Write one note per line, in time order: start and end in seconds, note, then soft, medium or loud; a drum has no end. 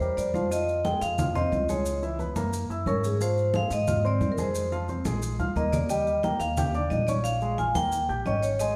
0.00 0.16 E2 medium
0.00 0.28 G3 medium
0.00 0.29 G4 medium
0.00 0.29 A#4 medium
0.00 0.31 C5 medium
0.00 high conga soft
0.00 maracas soft
0.17 0.96 F2 medium
0.17 0.33 D5 medium
0.17 high conga soft
0.17 maracas medium
0.34 0.48 F3 medium
0.34 0.48 F4 medium
0.34 0.50 C5 medium
0.34 0.48 F5 medium
0.34 high conga medium
0.34 maracas soft
0.51 0.78 F3 medium
0.51 0.79 F4 medium
0.51 0.86 D#5 medium
0.51 0.79 F5 medium
0.51 high conga soft
0.51 maracas medium
0.68 high conga soft
0.68 maracas soft
0.85 1.12 G#3 medium
0.85 1.12 G#4 medium
0.85 0.92 G5 loud
0.85 1.13 G#5 medium
0.85 high conga loud
0.85 maracas soft
1.01 1.48 F2 medium
1.01 1.33 F5 loud
1.01 high conga soft
1.01 maracas medium
1.18 1.32 F4 medium
1.18 1.32 F5 medium
1.18 1.32 F6 medium
1.18 high conga soft
1.18 low conga medium
1.18 maracas medium
1.35 1.63 C4 medium
1.35 1.63 C5 medium
1.35 1.67 D#5 medium
1.35 1.63 C6 medium
1.35 high conga soft
1.35 low conga medium
1.35 maracas soft
1.52 2.30 C#2 medium
1.52 high conga medium
1.52 maracas soft
1.69 1.97 G#3 medium
1.69 1.97 G#4 medium
1.69 2.00 C#5 medium
1.69 1.97 G#5 medium
1.69 high conga medium
1.69 maracas medium
1.86 high conga soft
1.86 maracas medium
2.02 2.16 E3 medium
2.02 2.17 E4 medium
2.02 2.17 E5 medium
2.02 high conga soft
2.02 maracas soft
2.19 2.33 B3 medium
2.19 2.33 B4 medium
2.19 2.33 B5 medium
2.19 high conga medium
2.19 maracas soft
2.36 2.67 F#2 medium
2.36 2.64 A#3 medium
2.36 2.64 A#4 medium
2.36 2.64 A#5 medium
2.36 high conga loud
2.36 maracas medium
2.53 high conga soft
2.53 maracas medium
2.69 2.85 F#2 medium
2.69 2.83 E4 medium
2.69 2.84 E5 medium
2.69 2.84 E6 medium
2.69 high conga soft
2.69 maracas soft
2.86 3.65 G#2 medium
2.86 3.14 C#4 medium
2.86 3.04 A#4 medium
2.86 3.15 C#5 medium
2.86 3.15 C#6 medium
2.86 high conga medium
2.86 maracas soft
3.04 3.12 G#4 medium
3.04 maracas medium
3.20 3.48 F3 medium
3.20 3.48 F4 medium
3.20 3.52 C5 loud
3.20 3.48 F5 medium
3.20 high conga soft
3.20 maracas loud
3.37 high conga soft
3.37 maracas soft
3.54 3.82 G#3 medium
3.54 3.82 G#4 medium
3.54 3.72 F5 loud
3.54 3.82 G#5 medium
3.54 high conga loud
3.54 maracas soft
3.70 4.18 G#2 loud
3.70 4.03 D#5 loud
3.70 high conga soft
3.70 maracas medium
3.87 4.01 F4 medium
3.87 4.01 F5 medium
3.87 4.02 F6 medium
3.87 high conga soft
3.87 low conga medium
3.87 maracas medium
4.04 4.32 C4 medium
4.04 4.32 C5 medium
4.04 4.30 D5 medium
4.04 4.33 C6 medium
4.04 high conga soft
4.04 maracas soft
4.21 5.00 F2 medium
4.21 high conga medium
4.21 maracas soft
4.32 4.39 A#4 medium
4.38 4.66 G#3 medium
4.38 4.66 G#4 medium
4.38 4.70 C5 medium
4.38 4.66 G#5 medium
4.38 high conga medium
4.38 maracas medium
4.55 high conga soft
4.55 maracas medium
4.72 4.86 F3 medium
4.72 4.86 F4 medium
4.72 4.86 F5 medium
4.72 high conga soft
4.72 maracas soft
4.88 5.03 C4 medium
4.88 5.03 C5 medium
4.88 5.03 C6 medium
4.88 high conga medium
4.88 maracas soft
5.05 5.37 A#1 medium
5.05 5.33 G#3 medium
5.05 5.34 G#4 medium
5.05 5.34 G#5 medium
5.05 high conga loud
5.05 maracas medium
5.22 high conga soft
5.22 maracas medium
5.39 5.55 D2 medium
5.39 5.53 F4 medium
5.39 5.53 F5 medium
5.39 5.53 F6 medium
5.39 high conga medium
5.39 maracas soft
5.56 6.34 D#2 medium
5.56 5.84 A#3 medium
5.56 5.84 A#4 medium
5.56 5.72 D#5 medium
5.56 5.84 A#5 medium
5.56 high conga medium
5.56 maracas soft
5.73 5.88 D5 medium
5.73 low conga medium
5.73 maracas medium
5.89 6.17 G3 medium
5.89 6.18 G4 medium
5.89 6.21 D#5 loud
5.89 6.18 G5 medium
5.89 high conga soft
5.89 maracas medium
6.07 high conga soft
6.07 maracas soft
6.23 6.51 A#3 medium
6.23 6.51 A#4 medium
6.23 6.39 G5 medium
6.23 6.51 A#5 medium
6.23 high conga loud
6.23 maracas soft
6.40 6.87 D#2 medium
6.40 6.71 F5 medium
6.40 high conga soft
6.40 maracas medium
6.57 6.71 G4 medium
6.57 6.71 G5 medium
6.57 6.72 G6 medium
6.57 high conga soft
6.57 low conga medium
6.57 maracas medium
6.74 7.02 D4 medium
6.74 7.02 D5 medium
6.74 7.02 D6 medium
6.74 high conga soft
6.74 maracas soft
6.90 7.69 A#1 medium
6.90 7.06 D#5 medium
6.90 high conga medium
6.90 maracas soft
7.07 7.36 C#4 medium
7.07 7.36 C#5 medium
7.07 7.23 D5 medium
7.07 7.36 C#6 medium
7.07 high conga medium
7.07 maracas medium
7.24 7.56 F5 loud
7.24 high conga soft
7.24 maracas loud
7.41 7.55 G#3 medium
7.41 7.56 G#4 medium
7.41 7.56 G#5 medium
7.41 high conga soft
7.41 maracas soft
7.58 7.72 F4 medium
7.58 7.72 F5 medium
7.58 7.74 G#5 loud
7.58 7.73 F6 medium
7.58 high conga medium
7.58 maracas soft
7.75 8.06 D#2 medium
7.75 8.03 A#3 medium
7.75 8.03 A#4 medium
7.75 8.07 G5 loud
7.75 8.03 A#5 medium
7.75 high conga loud
7.75 maracas medium
7.92 high conga soft
7.92 maracas loud
8.09 8.24 A#1 medium
8.09 8.23 G4 medium
8.09 8.23 G5 medium
8.09 8.23 G6 medium
8.09 high conga soft
8.09 maracas soft
8.25 8.76 G#1 medium
8.25 8.54 C#4 medium
8.25 8.54 C#5 medium
8.25 8.43 D#5 medium
8.25 8.54 C#6 medium
8.25 high conga medium
8.25 maracas soft
8.43 8.60 C#5 medium
8.43 maracas medium
8.59 8.76 G#3 medium
8.59 8.76 G#4 medium
8.59 8.76 D#5 loud
8.59 8.76 G#5 medium
8.59 high conga soft
8.59 maracas medium